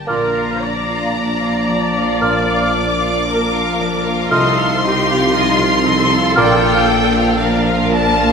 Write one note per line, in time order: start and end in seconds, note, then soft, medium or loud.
0.00 0.12 D3 soft
0.00 1.13 D4 soft
0.00 3.22 A#4 soft
0.07 4.27 A#1 medium
0.07 4.28 A#1 medium
0.07 2.20 A#2 soft
0.07 4.28 A#2 medium
0.07 6.21 F3 medium
0.07 0.49 A#3 medium
0.07 0.33 D4 medium
0.07 4.28 D4 medium
0.07 0.51 F4 medium
0.07 0.58 A#4 medium
0.07 0.50 D5 medium
0.07 0.33 D5 soft
0.07 2.22 A#5 medium
0.07 0.58 F6 medium
0.34 0.62 F4 soft
0.34 0.62 F5 soft
0.61 2.74 A#3 soft
0.61 0.89 D4 medium
0.61 1.15 D5 medium
0.61 0.89 D5 soft
0.89 1.15 F4 medium
0.89 1.16 F5 medium
1.14 3.26 D4 medium
1.14 1.41 D4 medium
1.14 1.41 D5 medium
1.14 3.24 D5 medium
1.41 1.69 F4 soft
1.41 1.69 F5 soft
1.68 3.79 F3 soft
1.68 1.95 D4 soft
1.68 1.96 D5 soft
1.97 2.23 F4 medium
1.97 2.23 F5 medium
2.21 4.35 A#2 medium
2.21 2.63 A#3 medium
2.21 2.47 D4 medium
2.21 2.63 F4 medium
2.21 2.63 D5 medium
2.21 2.47 D5 medium
2.21 4.31 D6 loud
2.21 2.71 F6 medium
2.48 2.75 F4 medium
2.48 2.75 F5 medium
2.75 4.36 A#3 medium
2.75 3.02 D4 medium
2.75 3.02 D5 medium
3.01 3.28 F4 medium
3.01 3.28 F5 medium
3.28 4.36 D4 medium
3.28 3.52 D4 medium
3.28 4.32 A#4 medium
3.28 3.52 D5 medium
3.54 3.80 F4 medium
3.54 3.80 F5 medium
3.79 5.85 F3 medium
3.79 4.06 D4 medium
3.79 4.06 D5 medium
4.05 4.31 F4 medium
4.05 4.31 F5 medium
4.31 6.33 C2 medium
4.31 6.39 C2 medium
4.31 6.41 C3 medium
4.31 6.33 C3 medium
4.31 4.71 A3 medium
4.31 4.56 D#4 medium
4.31 6.21 D#4 medium
4.31 4.72 F4 medium
4.31 4.84 A4 medium
4.31 4.72 D#5 medium
4.31 4.56 D#5 medium
4.31 6.32 C6 loud
4.31 4.80 F6 medium
4.57 4.83 F4 medium
4.57 4.83 F5 medium
4.83 6.41 C4 medium
4.83 5.09 D#4 medium
4.83 5.34 G4 medium
4.83 5.09 D#5 medium
5.08 5.34 F4 medium
5.08 5.34 F5 medium
5.34 5.58 D#4 medium
5.34 6.41 D#4 medium
5.34 5.86 F4 medium
5.34 5.58 D#5 medium
5.60 5.86 F4 medium
5.60 5.86 F5 medium
5.86 7.89 F3 medium
5.86 6.11 D#4 medium
5.86 7.41 A4 loud
5.86 6.11 D#5 medium
6.13 6.38 F4 medium
6.13 6.38 F5 medium
6.35 8.32 A#1 medium
6.35 8.32 A#1 loud
6.35 8.32 A#2 medium
6.35 8.32 F3 medium
6.35 6.77 A#3 loud
6.35 8.32 D4 medium
6.35 6.62 D4 medium
6.35 6.76 F4 medium
6.35 6.77 D5 medium
6.35 6.62 D5 medium
6.35 7.40 G5 loud
6.35 6.84 F6 medium
6.62 6.88 F4 medium
6.62 6.88 F5 medium
6.88 8.32 A#3 medium
6.88 7.14 D4 medium
6.88 7.15 D5 medium
7.15 7.40 F4 medium
7.15 7.40 F5 medium
7.39 8.32 D4 medium
7.39 7.64 D4 medium
7.39 8.32 A#4 medium
7.39 7.64 D5 medium
7.39 7.91 F5 loud
7.66 7.91 F4 medium
7.66 7.91 F5 medium
7.91 8.32 F3 medium
7.91 8.17 D4 medium
7.91 8.17 D5 medium
7.91 8.32 A5 loud
8.16 8.32 F4 medium
8.16 8.32 F5 medium